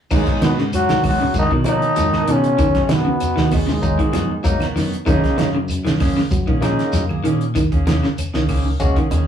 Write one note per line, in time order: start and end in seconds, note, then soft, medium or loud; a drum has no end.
0.10 0.25 G#2 loud
0.10 0.40 G#2 medium
0.10 0.30 D#3 medium
0.10 0.52 F#3 medium
0.10 0.41 G#3 medium
0.10 0.52 A#3 medium
0.10 0.52 B3 medium
0.10 0.27 B3 medium
0.10 0.52 D#4 medium
0.10 0.27 D#4 medium
0.10 0.26 F#4 medium
0.10 muted clean electric guitar stroke medium
0.10 kick medium
0.10 crash medium
0.10 low conga medium
0.10 claves medium
0.10 shekere medium
0.27 0.42 B3 soft
0.27 0.42 D#4 medium
0.27 0.42 F#4 medium
0.27 kick medium
0.27 snare soft
0.27 closed hi-hat soft
0.42 0.96 G#2 medium
0.42 0.58 B2 medium
0.42 0.61 D#3 medium
0.42 0.53 D#3 medium
0.42 0.61 B3 medium
0.42 0.58 B3 medium
0.42 0.62 D#4 medium
0.42 0.62 F#4 medium
0.42 snare medium
0.42 closed hi-hat soft
0.42 high conga medium
0.42 shekere soft
0.58 0.77 C#3 medium
0.58 snare soft
0.73 1.02 F#3 medium
0.73 1.03 F#4 medium
0.73 closed hi-hat medium
0.73 claves medium
0.73 shekere medium
0.89 1.08 D#3 medium
0.89 1.03 B3 soft
0.89 1.03 D#4 soft
0.89 1.04 F#4 medium
0.89 snare medium
0.89 closed hi-hat soft
0.89 high conga medium
1.03 1.18 G#2 loud
1.03 1.23 D#3 medium
1.03 1.34 F#3 medium
1.03 1.23 B3 medium
1.03 1.23 D#4 medium
1.03 1.23 F#4 medium
1.03 1.34 F#4 loud
1.03 kick medium
1.03 open hi-hat medium
1.03 low conga medium
1.03 claves medium
1.03 shekere soft
1.20 1.39 C#3 medium
1.20 low conga medium
1.34 1.49 G#2 medium
1.34 1.51 D#3 medium
1.34 kick medium
1.34 closed hi-hat medium
1.34 high conga medium
1.34 shekere medium
1.39 1.52 D#4 loud
1.51 1.78 B2 medium
1.51 1.60 D#3 medium
1.51 1.66 B3 soft
1.51 1.66 D#4 soft
1.51 1.66 F#4 medium
1.51 kick medium
1.64 1.85 D#3 medium
1.64 1.85 F3 medium
1.64 2.06 F#3 medium
1.64 2.06 A#3 medium
1.64 2.06 B3 medium
1.64 1.86 B3 medium
1.64 2.07 D#4 medium
1.64 1.86 D#4 medium
1.64 1.86 F#4 medium
1.64 closed hi-hat medium
1.64 high conga medium
1.64 claves medium
1.64 shekere soft
1.69 2.33 D#3 medium
1.69 2.32 D#4 loud
1.82 closed hi-hat soft
1.96 2.24 G#2 medium
1.96 2.16 F#3 medium
1.96 closed hi-hat medium
1.96 shekere loud
2.13 2.27 B3 soft
2.13 2.27 D#4 medium
2.13 2.27 F#4 medium
2.13 snare soft
2.13 high conga medium
2.13 claves medium
2.28 2.55 B2 medium
2.28 2.94 C#3 medium
2.28 2.47 D#3 medium
2.28 2.47 B3 medium
2.28 2.95 C#4 loud
2.28 2.47 D#4 medium
2.28 2.47 F#4 medium
2.28 closed hi-hat medium
2.28 shekere soft
2.44 closed hi-hat soft
2.58 2.77 D#3 medium
2.58 kick medium
2.58 closed hi-hat medium
2.58 low conga medium
2.58 claves medium
2.58 shekere medium
2.74 3.02 F#2 medium
2.74 2.89 B3 soft
2.74 2.89 D#4 medium
2.74 2.90 F#4 medium
2.74 kick medium
2.74 snare soft
2.74 closed hi-hat soft
2.89 3.58 B2 medium
2.89 2.99 D#3 medium
2.89 3.09 D#3 medium
2.89 3.09 B3 medium
2.89 3.09 D#4 medium
2.89 3.09 F#4 medium
2.89 snare medium
2.89 closed hi-hat medium
2.89 high conga loud
2.89 shekere soft
2.94 3.55 B3 medium
3.05 3.24 C#3 medium
3.05 high conga medium
3.20 closed hi-hat medium
3.20 claves medium
3.20 shekere medium
3.36 3.77 D#2 medium
3.36 3.55 D#3 medium
3.36 3.50 B3 soft
3.36 3.51 D#4 soft
3.36 3.51 F#4 medium
3.36 snare medium
3.36 high conga medium
3.51 3.71 D#3 medium
3.51 3.69 G#3 medium
3.51 3.71 B3 medium
3.51 3.71 D#4 medium
3.51 3.71 F#4 medium
3.51 kick medium
3.51 snare soft
3.51 open hi-hat medium
3.51 low conga medium
3.51 claves medium
3.51 shekere soft
3.56 3.70 G#2 medium
3.67 3.86 C#3 medium
3.67 4.58 G#3 medium
3.67 3.73 B3 medium
3.67 3.73 F4 medium
3.67 snare soft
3.71 4.59 G#2 medium
3.82 3.97 D#2 loud
3.82 3.98 F#3 medium
3.82 3.98 A#3 medium
3.82 3.99 B3 medium
3.82 3.98 D#4 loud
3.82 kick medium
3.82 closed hi-hat medium
3.82 shekere medium
3.99 4.08 D#3 medium
3.99 4.13 B3 soft
3.99 4.13 D#4 medium
3.99 4.14 F#4 medium
3.99 kick medium
3.99 closed hi-hat soft
4.13 4.28 F#2 loud
4.13 4.33 D#3 medium
4.13 4.32 F3 medium
4.13 4.33 B3 medium
4.13 4.33 D#4 medium
4.13 4.34 F#4 medium
4.13 snare soft
4.13 closed hi-hat medium
4.13 high conga loud
4.13 claves medium
4.13 shekere soft
4.28 4.34 B3 medium
4.28 4.34 D#4 loud
4.43 4.59 G#2 medium
4.43 4.65 F#3 medium
4.43 4.63 F#3 medium
4.43 4.65 A#3 medium
4.43 4.65 B3 medium
4.43 4.66 D#4 loud
4.43 kick medium
4.43 closed hi-hat medium
4.43 shekere loud
4.60 4.75 B3 soft
4.60 4.76 D#4 soft
4.60 4.76 F#4 medium
4.60 muted fingered electric bass stroke soft
4.60 snare soft
4.60 closed hi-hat soft
4.60 high conga medium
4.60 claves medium
4.76 4.90 F#2 medium
4.76 4.95 D#3 medium
4.76 4.95 B3 medium
4.76 4.96 D#4 medium
4.76 4.96 F#4 medium
4.76 snare soft
4.76 open hi-hat medium
4.76 shekere soft
4.93 closed hi-hat soft
5.06 5.22 F#2 loud
5.06 5.26 D#3 medium
5.06 5.23 D#3 medium
5.06 5.47 G#3 loud
5.06 5.48 A#3 medium
5.06 5.23 A#3 medium
5.06 5.48 C#4 medium
5.06 5.23 C#4 loud
5.06 5.48 D#4 loud
5.06 5.22 G#4 medium
5.06 kick medium
5.06 closed hi-hat medium
5.06 low conga medium
5.06 claves medium
5.06 shekere medium
5.23 5.37 A#3 soft
5.23 5.38 C#4 medium
5.23 5.38 G#4 medium
5.23 kick medium
5.23 snare soft
5.23 closed hi-hat soft
5.38 5.92 F#2 loud
5.38 5.48 D#3 medium
5.38 5.57 D#3 medium
5.38 5.57 A#3 medium
5.38 5.58 C#4 medium
5.38 5.58 G#4 medium
5.38 snare medium
5.38 closed hi-hat medium
5.38 high conga loud
5.38 shekere soft
5.55 5.74 C#3 medium
5.68 closed hi-hat medium
5.68 claves medium
5.68 shekere medium
5.85 6.04 D#3 medium
5.85 5.99 A#3 medium
5.85 6.00 C#4 medium
5.85 6.00 G#4 medium
5.85 snare medium
5.85 closed hi-hat soft
5.85 high conga medium
6.00 6.15 F#2 loud
6.00 6.20 D#3 medium
6.00 6.20 A#3 medium
6.00 6.20 C#4 medium
6.00 6.20 G#4 medium
6.00 kick medium
6.00 snare soft
6.00 open hi-hat medium
6.00 low conga medium
6.00 claves medium
6.00 shekere soft
6.17 6.36 C#3 medium
6.17 snare soft
6.30 6.45 F#3 medium
6.30 kick medium
6.30 closed hi-hat medium
6.30 high conga medium
6.30 shekere medium
6.47 6.75 A#2 medium
6.47 6.57 D#3 medium
6.47 6.62 A#3 medium
6.47 6.62 C#4 medium
6.47 6.63 G#4 medium
6.47 kick medium
6.61 6.82 D#3 medium
6.61 6.81 F3 medium
6.61 7.03 G#3 loud
6.61 7.03 A#3 loud
6.61 6.82 A#3 medium
6.61 7.03 C#4 medium
6.61 6.82 C#4 medium
6.61 7.04 D#4 loud
6.61 6.82 G#4 medium
6.61 snare soft
6.61 closed hi-hat medium
6.61 high conga loud
6.61 claves medium
6.61 shekere soft
6.79 snare soft
6.79 closed hi-hat soft
6.92 7.21 F#2 medium
6.92 7.12 F#3 medium
6.92 snare soft
6.92 closed hi-hat medium
6.92 shekere loud
7.09 7.24 A#3 medium
7.09 7.25 G#4 medium
7.09 high conga medium
7.09 claves medium
7.24 7.52 A#2 medium
7.24 7.43 D#3 medium
7.24 7.44 D#3 medium
7.24 7.44 A#3 medium
7.24 7.44 C#4 medium
7.24 7.44 G#4 medium
7.24 closed hi-hat medium
7.24 shekere soft
7.41 closed hi-hat soft
7.55 7.74 D#3 medium
7.55 kick medium
7.55 closed hi-hat medium
7.55 low conga medium
7.55 claves medium
7.55 shekere medium
7.72 7.99 D#2 medium
7.72 7.86 A#3 medium
7.72 7.86 C#4 medium
7.72 7.87 G#4 medium
7.72 kick medium
7.72 closed hi-hat soft
7.86 8.06 D#3 medium
7.86 7.97 D#3 medium
7.86 8.06 A#3 medium
7.86 8.06 C#4 medium
7.86 8.07 G#4 medium
7.86 snare medium
7.86 closed hi-hat medium
7.86 high conga loud
7.86 shekere soft
8.03 8.22 C#3 medium
8.03 snare soft
8.03 high conga medium
8.18 closed hi-hat medium
8.18 claves medium
8.18 shekere medium
8.33 8.74 C#2 medium
8.33 8.54 D#3 medium
8.33 8.47 A#3 soft
8.33 8.47 C#4 medium
8.33 8.47 G#4 medium
8.33 snare medium
8.33 high conga medium
8.48 8.68 D#3 medium
8.48 8.68 A#3 medium
8.48 8.68 C#4 medium
8.48 8.68 G#4 medium
8.48 kick medium
8.48 open hi-hat medium
8.48 low conga medium
8.48 claves medium
8.48 shekere soft
8.65 8.70 C#4 medium
8.65 8.70 D#4 medium
8.79 8.94 C#2 medium
8.79 8.96 G#3 loud
8.79 8.96 A#3 medium
8.79 8.96 C#4 medium
8.79 8.96 F#4 loud
8.79 kick medium
8.79 closed hi-hat medium
8.79 shekere loud
8.96 9.06 D#3 medium
8.96 9.12 A#3 soft
8.96 9.11 C#4 medium
8.96 9.11 G#4 medium
8.96 kick medium
8.96 closed hi-hat soft
9.11 9.25 D#2 medium
9.11 9.27 D#3 medium
9.11 9.27 C#4 medium
9.11 9.27 G#4 medium
9.11 closed hi-hat medium
9.11 high conga medium
9.11 claves medium
9.11 shekere soft